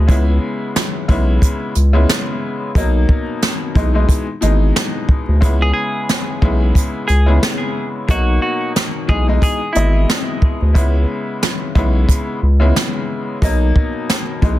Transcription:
0.08 C#2 C#3 G#3 B3 E4, kick, closed hi-hat
0.76 snare, closed hi-hat
1.08 B1 C#3 G#3 B3 E4, kick, closed hi-hat
1.42 kick, closed hi-hat
1.75 C#2, closed hi-hat
1.93 C#3 G#3 B3 E4
2.09 snare, closed hi-hat
2.75 B1 B2 F#3 A#3 D#4, kick, closed hi-hat
3.09 kick
3.42 snare, closed hi-hat
3.74 B1 B2 E3 G#3 D#4, kick, closed hi-hat
3.94 B2 E3 G#3 D#4
4.09 kick, closed hi-hat
4.41 G#1 B2 E3 G#3 D#4, closed hi-hat
4.76 snare, closed hi-hat
5.09 kick
5.28 D2
5.41 C#2 C#3 G#3 B3 E4, kick, closed hi-hat
5.62 G#4
5.73 G#4
6.09 snare, closed hi-hat
6.42 B1 C#3 G#3 B3 E4, kick
6.75 kick, closed hi-hat
7.08 C#2 G#4, closed hi-hat
7.26 C#3 G#3 B3 E4
7.43 snare, closed hi-hat
8.08 B1 B2 F#3 A#3 D#4 F#4, kick, closed hi-hat
8.42 F#4
8.76 snare, closed hi-hat
9.08 B1 B2 E3 G#3 D#4 G#4, kick
9.27 B2 E3 G#3 D#4
9.42 G#4, kick, closed hi-hat
9.73 G#1 B2 E3 G#3 E4 D#5, closed hi-hat
10.10 snare, closed hi-hat
10.42 kick
10.62 D2
10.74 C#2 C#3 G#3 B3 E4, kick, closed hi-hat
11.42 snare, closed hi-hat
11.75 B1 C#3 G#3 B3 E4, kick, closed hi-hat
12.09 kick, closed hi-hat
12.43 C#2
12.60 C#3 G#3 B3 E4
12.76 snare, closed hi-hat
13.42 B1 B2 F#3 A#3 D#4, kick, closed hi-hat
13.76 kick
14.09 snare, closed hi-hat
14.41 B1 B2 E3 G#3 D#4, kick, closed hi-hat

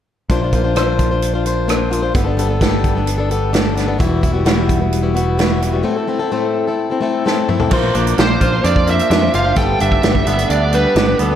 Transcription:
0.29 A#1 A#3 D4 F4 C5, kick, closed hi-hat
0.42 D4 F4 C5
0.52 A#3 D4 F4 C5, kick, closed hi-hat
0.64 D4 F4 C5
0.75 A#3 D4 F4 C5, cross-stick, closed hi-hat
0.99 kick, closed hi-hat
1.11 D4 F4 C5
1.22 closed hi-hat
1.34 D4 F4 C5
1.45 A#3 D4 F4 C5, closed hi-hat
1.68 A#3 D4 F4 C5, cross-stick, closed hi-hat
1.91 A#3 D4 F4 C5, closed hi-hat
2.02 D4 F4 C5
2.14 G1 G3 B3 D4 A4, kick, closed hi-hat
2.25 B3 D4 A4
2.37 G3 B3 D4 A4, closed hi-hat
2.49 B3 D4 A4
2.61 G3 B3 D4 A4, kick, snare, closed hi-hat
2.84 kick, closed hi-hat
2.95 B3 D4 A4
3.07 closed hi-hat
3.18 B3 D4 A4
3.30 G3 B3 D4 A4, closed hi-hat
3.53 G3 B3 D4 A4, snare, closed hi-hat
3.76 G3 B3 D4 A4, snare, closed hi-hat
3.87 B3 D4 A4
3.98 E1 E2 E3 G3 B3 E4 F#4, kick, closed hi-hat
4.21 G3 B3 E4 F#4, kick, closed hi-hat
4.32 G3 B3 E4 F#4
4.45 E2 E3 G3 B3 E4 F#4, snare, closed hi-hat
4.69 kick, closed hi-hat
4.80 G3 B3 E4 F#4
4.93 closed hi-hat
5.03 G3 B3 E4 F#4
5.14 G3 B3 E4 F#4, closed hi-hat
5.37 E2 E3 G3 B3 E4 F#4, snare, closed hi-hat
5.62 G3 B3 E4 F#4, closed hi-hat
5.72 G3 B3 E4 F#4
5.83 A2 A3 C4 E4 A4
5.96 C4 E4 A4
6.08 A3 C4 E4 A4
6.19 C4 E4 A4
6.32 A2 A3 C4 E4 A4
6.67 C4 E4 A4
6.90 C4 E4 A4
7.01 A3 C4 E4 A4
7.25 A2 A3 C4 E4 A4, snare
7.49 A3 C4 E4 A4, mid tom
7.60 C4 E4 A4, floor tom
7.71 A#1 A#3 D4 F4 C5, kick, crash
7.95 A#1 A#3 D4 F4 C5, closed hi-hat
8.07 closed hi-hat
8.18 A#1 A#3 D4 F4 C5, snare, closed hi-hat
8.41 A#1 A#3 D4 F4 C5, kick, closed hi-hat
8.52 D4 F4 C5
8.64 F2 D4 D5, closed hi-hat
8.76 kick
8.87 A#3 D4 F4 C5 E5, closed hi-hat
8.99 closed hi-hat
9.10 F2 A#3 D4 F4 C5, snare, closed hi-hat
9.21 D4 F4 C5
9.33 F#1 A#3 D4 F4 C5 F5, closed hi-hat
9.44 D4 F4 C5
9.56 G1 G3 B3 D4 A4 G5, kick, closed hi-hat
9.78 G1 G3 B3 D4 A4 E5, closed hi-hat
9.92 kick
10.02 G1 G3 B3 D4 A4, snare, closed hi-hat
10.15 kick
10.25 G1 G3 B3 D4 A4, closed hi-hat
10.36 B3 D4 A4, closed hi-hat
10.50 D2 D4 D5, closed hi-hat
10.73 G3 B3 D4 A4 B4, closed hi-hat
10.95 G1 G3 B3 D4 A4, snare, closed hi-hat
11.08 B3 D4 A4
11.19 D2 G3 B3 D4 A4, closed hi-hat
11.30 B3 D4 A4

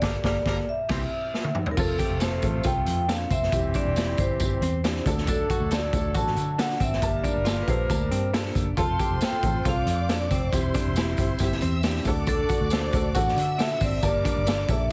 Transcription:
Already playing: D5
0.01 G1 G3 A#3 D4 G4 A4 A#4, kick, snare, crash
0.24 G1 G3 A#3 D4 G4 A4 A#4 D5, kick, snare
0.45 G1 G3 A#3 D4 G4 A4 A#4, kick, snare
0.69 E5
0.89 C2 E3 G3 C4 E4 G4, kick, snare, crash
1.34 snare
1.44 high tom
1.55 mid tom
1.66 floor tom
1.71 A#4
1.77 F1 C3 F3 A3 C4 F4 A4, kick, crash, tambourine
1.99 G4, kick, closed hi-hat, tambourine
2.10 F1
2.20 C4 F4 A4 C5, snare, closed hi-hat, tambourine
2.42 A1 C4 F4 A4, kick, closed hi-hat, tambourine
2.63 C2 C4 F4 A4 G5, kick, closed hi-hat, tambourine
2.86 F2 G5, closed hi-hat, tambourine
3.09 C4 D4 F4 A4 F5, snare, closed hi-hat, tambourine
3.30 F1 C4 E5, kick, closed hi-hat, tambourine
3.43 snare
3.52 E1 E3 G3 C4 E4 G4, kick, closed hi-hat, tambourine
3.74 D4 D5, kick, closed hi-hat, tambourine
3.85 E1
3.96 C4 E4 G4 D5, snare, closed hi-hat, tambourine
4.17 G1 C4 E4 G4 C5, kick, closed hi-hat, tambourine
4.40 G1 C4 E4 G4, kick, closed hi-hat, tambourine
4.61 E2 C4, closed hi-hat, tambourine
4.84 C4 D4 E4 G4, snare, closed hi-hat, tambourine
4.96 snare
5.06 D2 F#3 A3 D4 F#4 A4, kick, closed hi-hat, tambourine
5.18 snare
5.27 D4 A4, kick, closed hi-hat, tambourine
5.50 F#4, kick, closed hi-hat, tambourine
5.60 D2
5.71 D4 F#4 A4 D5, snare, closed hi-hat, tambourine
5.93 D2 D4 F#4 A4, kick, closed hi-hat, tambourine
6.14 A1 D4 F#4 A4 A5, kick, closed hi-hat, tambourine
6.27 snare
6.36 D3, closed hi-hat, tambourine
6.58 D4 F#4 A4 F#5, snare, closed hi-hat, tambourine
6.70 snare
6.80 G#1 C4 E5, kick, closed hi-hat, tambourine
6.93 snare
7.02 G1 G3 A#3 D4 G4 A#4 A5, kick, closed hi-hat, tambourine
7.24 D4 D5, kick, closed hi-hat, tambourine
7.36 G1
7.45 A#3 F4 G4 A4, snare, closed hi-hat, tambourine
7.62 B4
7.67 A#1 A#3 G4 A4 C5, kick, closed hi-hat, tambourine
7.89 D2 A#3 G4 A5, kick, closed hi-hat, tambourine
8.11 G2 C4, closed hi-hat, tambourine
8.33 A#3 D4 G4 A4, snare, closed hi-hat, tambourine
8.45 snare
8.55 F#1, kick, closed hi-hat, tambourine
8.77 F1 A3 C4 F4 A4 C5 A5 C6, kick, closed hi-hat, tambourine
8.99 G4, kick, closed hi-hat, tambourine
9.10 F1
9.20 C4 F4 A4 G5, snare, closed hi-hat, tambourine
9.32 muted fingered electric bass stroke
9.43 A1 C4 F4 A4, kick, closed hi-hat, tambourine
9.65 C2 C4 F4 A4 D5 F5 D6, kick, closed hi-hat, tambourine
9.86 F2 F5, closed hi-hat, tambourine
10.09 C4 D4 F4 A4, snare, closed hi-hat, tambourine
10.14 D5
10.30 F1 C4, kick, closed hi-hat, tambourine
10.35 C5
10.52 E1 G3 C4 E4 G4 C5 C6, kick, closed hi-hat, tambourine
10.74 D4, kick, closed hi-hat, tambourine
10.85 E1
10.96 C4 E4 G4, snare, closed hi-hat, tambourine
11.17 G1 C4 E4 G4, kick, closed hi-hat, tambourine
11.39 G1 C4 E4 G4 E5 E6, kick, closed hi-hat, tambourine
11.52 snare
11.61 E2 C4, closed hi-hat, tambourine
11.83 C4 D4 E4 G4, snare, closed hi-hat, tambourine
11.95 snare
12.05 D2 A3 D4 F#4 A4 D5 D6, kick, closed hi-hat, tambourine
12.27 D4 A4, kick, closed hi-hat, tambourine
12.49 F#4, kick, closed hi-hat, tambourine
12.61 D2
12.70 D4 F#4 A4 C5, snare, closed hi-hat, tambourine
12.93 D2 D4 F#4 A4, kick, closed hi-hat, tambourine
13.15 A1 D4 F#4 A4 F#5, kick, closed hi-hat, tambourine
13.28 snare
13.36 D3 E5 E6, closed hi-hat, tambourine
13.59 D4 F#4 A4 E5, snare, closed hi-hat, tambourine
13.71 snare
13.81 G#1 C4 D5, kick, open hi-hat, tambourine
14.02 G1 G3 A#3 D4 G4 A#4 D5 A5 D6, kick, closed hi-hat, tambourine
14.25 D4 D5, kick, closed hi-hat, tambourine
14.36 G1
14.46 A#3 D4 G4 A4, snare, closed hi-hat, tambourine
14.69 A#1 A#3 G4 A4 E5, kick, closed hi-hat, tambourine

